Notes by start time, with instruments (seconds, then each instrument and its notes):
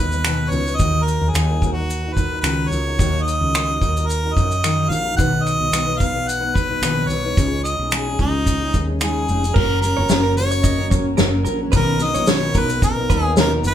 Already playing: fretless electric bass D#2, steel-string acoustic guitar F#3, harmonica B4
0.00 steel-string acoustic guitar B3 D#4 B4
0.12 steel-string acoustic guitar F#3 B3 D#4 B4, shaker
0.24 steel-string acoustic guitar B2 D#3 F#3 B3 D#4 B4, finger snap, shaker
0.50 fretless electric bass C#2, steel-string acoustic guitar F#3 B3, harmonica C#5, shaker
0.55 steel-string acoustic guitar D#4 B4
0.67 steel-string acoustic guitar F#3 B3 D#4 B4, shaker
0.76 fretless electric bass D#2, steel-string acoustic guitar D#3, harmonica D#5, kick, shaker
0.80 steel-string acoustic guitar F#3 D#4 F#4 A#4
1.03 harmonica A#4
1.08 shaker
1.21 fretless electric bass D#2
1.30 fretless electric bass D#2, harmonica G#4
1.35 steel-string acoustic guitar D#3 F#3 D#4 F#4 A#4, finger snap, shaker
1.51 steel-string acoustic guitar D#4 F#4 A#4
1.62 steel-string acoustic guitar F#3 D#4 F#4, kick, shaker
1.66 steel-string acoustic guitar A#4
1.73 harmonica F#4
1.77 steel-string acoustic guitar D#4 F#4 A#4
1.90 shaker
2.04 steel-string acoustic guitar D#4 F#4 A#4
2.13 steel-string acoustic guitar F#3, harmonica B4, kick
2.17 steel-string acoustic guitar D#4 F#4 A#4, shaker
2.32 steel-string acoustic guitar D#4 F#4 A#4
2.41 fretless electric bass C#2, steel-string acoustic guitar D#3 F#3, harmonica B4, finger snap, shaker
2.45 steel-string acoustic guitar D#4 F#4 A#4
2.68 fretless electric bass C#2, steel-string acoustic guitar F#3 D#4, harmonica C#5, shaker
2.73 steel-string acoustic guitar F#4 A#4
2.86 steel-string acoustic guitar D#4 F#4 A#4
2.98 fretless electric bass D#2, steel-string acoustic guitar D#3 F#3 D#4 F#4 A#4, kick, shaker
3.22 harmonica D#5
3.28 shaker
3.41 fretless electric bass C#2
3.54 steel-string acoustic guitar D#3 F#3 D#4 F#4 A#4, finger snap, shaker
3.69 steel-string acoustic guitar D#4 F#4 A#4
3.82 fretless electric bass D#2, steel-string acoustic guitar F#3 D#4 F#4 A#4, kick, shaker
3.97 steel-string acoustic guitar F#4 A#4, shaker
4.01 steel-string acoustic guitar D#4
4.07 harmonica A#4, shaker
4.23 steel-string acoustic guitar D#4 F#4 A#4
4.34 fretless electric bass F#2, steel-string acoustic guitar F#3 D#4, harmonica D#5, kick, shaker
4.38 steel-string acoustic guitar F#4 A#4
4.51 shaker
4.64 steel-string acoustic guitar D#3 F#3 D#4 F#4 A#4, finger snap, shaker
4.89 fretless electric bass A#1, steel-string acoustic guitar F#3 D#4 F#4 A#4, harmonica F5, shaker
5.05 steel-string acoustic guitar D#4 F#4 A#4
5.17 fretless electric bass B1, steel-string acoustic guitar B2 D#3 F#3 B3 D#4 B4, harmonica F#5, kick, shaker
5.43 harmonica D#5, finger snap, shaker
5.61 fretless electric bass B1
5.71 fretless electric bass B1, steel-string acoustic guitar B2 D#3 F#3 B3 D#4 B4, finger snap, shaker
5.85 steel-string acoustic guitar F#3 B3 D#4 B4
5.98 steel-string acoustic guitar F#3 B3 D#4 B4, harmonica F5, kick, shaker
6.14 steel-string acoustic guitar F#3 B3 D#4 B4
6.28 harmonica F#5, shaker
6.40 steel-string acoustic guitar F#3 B3 D#4 B4
6.54 steel-string acoustic guitar F#3 B3 D#4 B4, harmonica B4, kick, shaker
6.69 steel-string acoustic guitar F#3 B3 D#4 B4
6.82 fretless electric bass A#1, steel-string acoustic guitar B2 D#3 F#3 B3 D#4 B4, finger snap, shaker
7.08 fretless electric bass B1, steel-string acoustic guitar F#3 B3 D#4, harmonica C#5, shaker
7.13 steel-string acoustic guitar B4
7.25 steel-string acoustic guitar F#3 B3 D#4 B4
7.36 fretless electric bass C#2, steel-string acoustic guitar C#3 G#3 C#4 D#4 G#4, kick, shaker
7.64 harmonica D#5, finger snap, shaker
7.79 fretless electric bass B1
7.91 steel-string acoustic guitar C#3 G#3 C#4 D#4 G#4, harmonica G#4, finger snap, shaker
8.07 steel-string acoustic guitar C#4 D#4 G#4
8.19 fretless electric bass C#2, steel-string acoustic guitar G#3 C#4 D#4 G#4, harmonica D#4, kick, shaker
8.46 kick, shaker
8.61 steel-string acoustic guitar C#4 D#4 G#4
8.74 fretless electric bass D#2, steel-string acoustic guitar G#3 C#4 D#4 G#4, kick, shaker
8.89 steel-string acoustic guitar C#4 D#4 G#4
9.01 steel-string acoustic guitar C#3 G#3 C#4 D#4 G#4, harmonica G#4, finger snap, shaker
9.28 fretless electric bass F1, steel-string acoustic guitar G#3 C#4 D#4 G#4, shaker
9.43 steel-string acoustic guitar C#4 D#4 G#4, shaker
9.54 fretless electric bass F#1, steel-string acoustic guitar F#3 C#4 F#4 A#4, ambient pad F#3 A#3 C#4, clean electric guitar A#4, harmonica A#4, kick, crash
9.81 steel-string acoustic guitar F#3 C#4 F#4 A#4, harmonica A#4, shaker
9.97 fretless electric bass F#1, steel-string acoustic guitar F#4 A#4, clean electric guitar C#5
10.02 steel-string acoustic guitar C#4
10.09 fretless electric bass F#1, steel-string acoustic guitar F#3 C#4 F#4 A#4, snare, shaker
10.23 clean electric guitar A#4
10.37 steel-string acoustic guitar F#3 C#4 F#4 A#4, harmonica C#5, shaker
10.51 clean electric guitar C#5, shaker
10.63 clean electric guitar D#5, kick, shaker
10.78 steel-string acoustic guitar C#4 F#4 A#4
10.90 steel-string acoustic guitar F#3 C#4 F#4 A#4, clean electric guitar C#5, kick, shaker
11.17 fretless electric bass F#1, steel-string acoustic guitar F#3 C#4 F#4 A#4, clean electric guitar A#4, snare, shaker
11.45 fretless electric bass A#1, steel-string acoustic guitar F#3 C#4 F#4 A#4, clean electric guitar A#4, shaker
11.61 steel-string acoustic guitar C#4 F#4 A#4
11.72 fretless electric bass B1, steel-string acoustic guitar B2 D#3 F#3 B3 D#4 A#4, ambient pad B3 D#4 A#4, clean electric guitar B4, kick, shaker
11.76 harmonica A#4
12.00 steel-string acoustic guitar F#3 B3 D#4 A#4, harmonica D#5, snare, shaker
12.15 fretless electric bass A#1, steel-string acoustic guitar B3 D#4 A#4, clean electric guitar C#5, shaker
12.20 steel-string acoustic guitar F#3
12.27 steel-string acoustic guitar B2 D#3 F#3 B3 D#4 A#4, clean electric guitar B4, harmonica C#5, snare, shaker
12.54 fretless electric bass B1, steel-string acoustic guitar F#3 B3 D#4 A#4, clean electric guitar A#4, kick, shaker
12.59 harmonica B4
12.69 shaker
12.82 harmonica A#4, kick, shaker
12.98 steel-string acoustic guitar F#3 B3 D#4 A#4
13.10 fretless electric bass D#2, steel-string acoustic guitar F#3 B3 D#4 A#4, clean electric guitar B4, kick, shaker
13.36 steel-string acoustic guitar B2 D#3 F#3 B3 D#4 A#4, harmonica A#4, snare, shaker
13.64 fretless electric bass F#1, steel-string acoustic guitar F#3 B3 D#4 A#4, harmonica B4, shaker